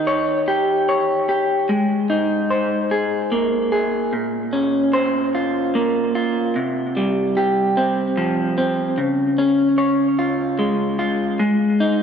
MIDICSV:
0, 0, Header, 1, 2, 480
1, 0, Start_track
1, 0, Tempo, 808625
1, 1009, Time_signature, 6, 3, 24, 8
1, 7140, End_track
2, 0, Start_track
2, 0, Title_t, "Clean electric guitar"
2, 0, Program_c, 0, 27
2, 0, Note_on_c, 0, 51, 56
2, 0, Note_on_c, 0, 63, 52
2, 42, Note_on_c, 0, 73, 53
2, 284, Note_on_c, 0, 67, 54
2, 520, Note_off_c, 0, 73, 0
2, 527, Note_on_c, 0, 73, 56
2, 758, Note_off_c, 0, 67, 0
2, 765, Note_on_c, 0, 67, 55
2, 768, Note_off_c, 0, 51, 0
2, 1004, Note_on_c, 0, 56, 59
2, 1008, Note_off_c, 0, 63, 0
2, 1008, Note_off_c, 0, 67, 0
2, 1009, Note_off_c, 0, 73, 0
2, 1245, Note_on_c, 0, 63, 57
2, 1487, Note_on_c, 0, 72, 59
2, 1729, Note_on_c, 0, 68, 58
2, 1969, Note_on_c, 0, 58, 59
2, 2202, Note_off_c, 0, 68, 0
2, 2209, Note_off_c, 0, 56, 0
2, 2209, Note_on_c, 0, 68, 61
2, 2450, Note_off_c, 0, 63, 0
2, 2450, Note_on_c, 0, 46, 59
2, 2451, Note_off_c, 0, 58, 0
2, 2451, Note_off_c, 0, 68, 0
2, 2468, Note_off_c, 0, 72, 0
2, 2688, Note_on_c, 0, 61, 58
2, 2929, Note_on_c, 0, 72, 62
2, 3174, Note_on_c, 0, 65, 59
2, 3414, Note_on_c, 0, 58, 62
2, 3650, Note_off_c, 0, 65, 0
2, 3651, Note_off_c, 0, 46, 0
2, 3653, Note_on_c, 0, 65, 61
2, 3890, Note_off_c, 0, 61, 0
2, 3891, Note_off_c, 0, 72, 0
2, 3893, Note_off_c, 0, 58, 0
2, 3893, Note_on_c, 0, 48, 63
2, 4135, Note_on_c, 0, 55, 62
2, 4153, Note_off_c, 0, 65, 0
2, 4374, Note_on_c, 0, 67, 67
2, 4613, Note_on_c, 0, 60, 61
2, 4852, Note_on_c, 0, 53, 60
2, 5084, Note_off_c, 0, 60, 0
2, 5091, Note_off_c, 0, 48, 0
2, 5091, Note_on_c, 0, 60, 60
2, 5329, Note_on_c, 0, 49, 62
2, 5330, Note_off_c, 0, 60, 0
2, 5331, Note_off_c, 0, 53, 0
2, 5331, Note_off_c, 0, 67, 0
2, 5332, Note_off_c, 0, 55, 0
2, 5570, Note_on_c, 0, 61, 59
2, 5805, Note_on_c, 0, 73, 60
2, 6047, Note_on_c, 0, 65, 59
2, 6284, Note_on_c, 0, 56, 59
2, 6516, Note_off_c, 0, 65, 0
2, 6523, Note_on_c, 0, 65, 64
2, 6526, Note_off_c, 0, 49, 0
2, 6757, Note_off_c, 0, 56, 0
2, 6764, Note_off_c, 0, 73, 0
2, 6764, Note_on_c, 0, 56, 61
2, 6765, Note_off_c, 0, 65, 0
2, 6767, Note_off_c, 0, 61, 0
2, 7006, Note_on_c, 0, 63, 63
2, 7140, Note_off_c, 0, 56, 0
2, 7140, Note_off_c, 0, 63, 0
2, 7140, End_track
0, 0, End_of_file